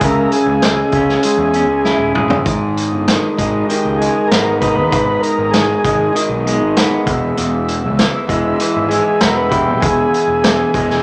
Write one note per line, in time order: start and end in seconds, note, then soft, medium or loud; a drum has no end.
0.00 0.25 C#2 loud
0.00 1.55 C#3 medium
0.00 0.63 G#3 medium
0.00 0.64 C#4 medium
0.00 0.94 E4 medium
0.00 2.15 G#4 medium
0.00 2.43 C#5 medium
0.00 2.42 E6 medium
0.00 kick loud
0.00 closed hi-hat medium
0.04 0.31 A#4 loud
0.32 2.12 G#4 medium
0.32 closed hi-hat medium
0.46 0.82 C#2 medium
0.62 1.24 G#3 medium
0.62 snare loud
0.62 closed hi-hat medium
0.92 1.16 C#2 loud
0.92 1.54 C#4 medium
0.92 kick medium
0.92 closed hi-hat medium
1.09 snare soft
1.23 3.08 G#3 medium
1.23 closed hi-hat loud
1.37 1.68 E2 medium
1.53 2.47 C#4 medium
1.53 closed hi-hat medium
1.68 1.92 C#2 medium
1.85 2.46 E4 medium
1.85 snare medium
1.97 2.12 D#1 medium
2.15 2.29 E1 medium
2.15 4.62 G#4 medium
2.15 mid tom medium
2.30 2.44 G1 medium
2.30 floor tom medium
2.46 2.92 G#1 medium
2.46 4.00 G#2 medium
2.46 6.91 G#3 medium
2.46 6.91 D#5 medium
2.46 6.91 D#6 medium
2.46 kick loud
2.46 closed hi-hat medium
2.77 closed hi-hat medium
2.92 3.16 G1 medium
3.08 3.70 D#3 medium
3.08 snare loud
3.08 closed hi-hat medium
3.37 3.62 G#1 medium
3.37 4.01 G#3 medium
3.37 3.66 D#4 medium
3.37 kick medium
3.37 closed hi-hat medium
3.69 5.23 D#3 medium
3.69 3.97 G4 medium
3.69 closed hi-hat medium
3.85 4.08 C#2 medium
3.98 5.85 G#3 medium
3.98 4.30 G#4 medium
3.98 closed hi-hat medium
4.28 4.78 G#1 medium
4.28 4.57 A#4 medium
4.28 closed hi-hat medium
4.32 6.77 B3 medium
4.32 snare loud
4.61 6.15 D#4 medium
4.61 4.68 B4 loud
4.61 kick medium
4.61 closed hi-hat medium
4.69 4.75 A#4 medium
4.75 4.88 D#2 medium
4.75 4.90 B4 loud
4.91 5.16 G#1 medium
4.91 6.45 G#2 medium
4.91 5.23 B4 loud
4.91 kick loud
4.91 closed hi-hat medium
5.21 5.53 A#4 medium
5.21 closed hi-hat medium
5.38 5.73 G#1 medium
5.51 6.14 D#3 medium
5.51 6.15 G#4 medium
5.51 snare loud
5.51 closed hi-hat medium
5.84 6.08 G#1 medium
5.84 6.46 G#3 medium
5.84 kick medium
5.84 closed hi-hat medium
6.13 7.07 D#3 medium
6.13 7.02 D#4 medium
6.13 closed hi-hat loud
6.29 6.61 B1 medium
6.47 8.28 G#3 medium
6.47 closed hi-hat medium
6.61 6.84 G#1 medium
6.76 9.21 B3 medium
6.76 snare loud
6.76 closed hi-hat loud
7.06 7.30 E1 loud
7.06 7.37 E2 medium
7.06 11.03 G#3 medium
7.06 11.03 E5 medium
7.06 11.03 E6 medium
7.06 kick medium
7.06 closed hi-hat medium
7.37 7.86 E1 medium
7.37 8.90 E2 medium
7.37 closed hi-hat medium
7.68 closed hi-hat medium
7.84 8.07 C#2 medium
7.99 8.60 E3 medium
7.99 snare loud
7.99 closed hi-hat medium
8.28 8.52 E1 medium
8.28 8.89 G#3 medium
8.28 8.91 E4 medium
8.28 kick medium
8.28 closed hi-hat medium
8.60 10.14 E3 medium
8.60 closed hi-hat medium
8.76 8.99 G#1 medium
8.89 10.44 G#3 medium
8.89 9.21 G#4 medium
8.89 closed hi-hat medium
9.20 9.70 E1 medium
9.20 10.74 B3 medium
9.20 9.35 A#4 loud
9.20 snare loud
9.20 closed hi-hat medium
9.36 9.52 B4 medium
9.49 11.03 E4 medium
9.49 9.82 G4 medium
9.49 kick medium
9.49 closed hi-hat medium
9.68 9.80 B1 medium
9.80 10.06 E1 loud
9.80 11.03 E2 medium
9.80 11.03 G#4 medium
9.80 kick loud
9.80 closed hi-hat medium
10.14 closed hi-hat medium
10.27 10.63 E1 medium
10.44 11.03 E3 medium
10.44 snare loud
10.44 closed hi-hat medium
10.74 10.98 E1 loud
10.74 11.03 G#3 medium
10.74 kick medium
10.74 closed hi-hat medium
10.90 snare soft